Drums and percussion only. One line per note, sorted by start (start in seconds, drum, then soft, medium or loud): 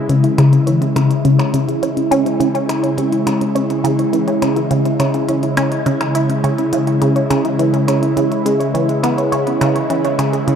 0.10 closed hi-hat medium
0.24 closed hi-hat soft
0.38 closed hi-hat medium
0.38 percussion blips medium
0.53 closed hi-hat soft
0.67 closed hi-hat medium
0.82 closed hi-hat soft
0.96 closed hi-hat medium
0.96 percussion blips medium
1.11 closed hi-hat soft
1.25 closed hi-hat medium
1.39 closed hi-hat soft
1.39 percussion blips medium
1.54 closed hi-hat medium
1.69 closed hi-hat soft
1.83 closed hi-hat medium
1.97 closed hi-hat soft
2.12 closed hi-hat medium
2.26 closed hi-hat soft
2.41 closed hi-hat medium
2.55 closed hi-hat soft
2.69 closed hi-hat medium
2.69 percussion blips medium
2.84 closed hi-hat soft
2.98 closed hi-hat medium
3.12 closed hi-hat soft
3.27 closed hi-hat medium
3.27 percussion blips medium
3.41 closed hi-hat soft
3.56 closed hi-hat medium
3.70 closed hi-hat soft
3.85 closed hi-hat medium
3.99 closed hi-hat soft
4.13 closed hi-hat medium
4.28 closed hi-hat soft
4.42 closed hi-hat medium
4.42 percussion blips medium
4.56 closed hi-hat soft
4.71 closed hi-hat medium
4.85 closed hi-hat soft
5.00 closed hi-hat medium
5.00 percussion blips medium
5.14 closed hi-hat soft
5.29 closed hi-hat medium
5.43 closed hi-hat soft
5.57 closed hi-hat medium
5.57 percussion blips medium
5.72 closed hi-hat soft
5.86 closed hi-hat medium
6.01 closed hi-hat soft
6.01 percussion blips medium
6.15 closed hi-hat medium
6.30 closed hi-hat soft
6.44 closed hi-hat medium
6.58 closed hi-hat soft
6.73 closed hi-hat medium
6.87 closed hi-hat soft
7.02 closed hi-hat medium
7.16 closed hi-hat soft
7.31 closed hi-hat medium
7.31 percussion blips medium
7.45 closed hi-hat soft
7.59 closed hi-hat medium
7.74 closed hi-hat soft
7.88 closed hi-hat medium
7.88 percussion blips medium
8.03 closed hi-hat soft
8.17 closed hi-hat medium
8.32 closed hi-hat soft
8.46 closed hi-hat medium
8.61 closed hi-hat soft
8.75 closed hi-hat medium
8.89 closed hi-hat soft
9.04 closed hi-hat medium
9.04 percussion blips medium
9.18 closed hi-hat soft
9.32 closed hi-hat medium
9.47 closed hi-hat soft
9.61 closed hi-hat medium
9.61 percussion blips soft
9.76 closed hi-hat soft
9.90 closed hi-hat medium
10.05 closed hi-hat soft
10.19 closed hi-hat medium
10.19 percussion blips medium
10.33 closed hi-hat soft
10.48 closed hi-hat medium